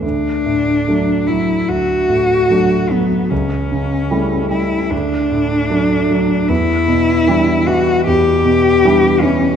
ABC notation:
X:1
M:4/4
L:1/8
Q:1/4=75
K:D
V:1 name="Cello"
D3 E F3 B, | C3 E D4 | E3 F G3 C |]
V:2 name="Grand piano" clef=bass
D,, A,, [F,A,D] F, D,, A,, [F,A,D] F, | C,, C, [G,A,E] G, D,, A,, [F,A,D] F, | E,, B,, [E,G,D] E, E,, B,, [E,G,D] E, |]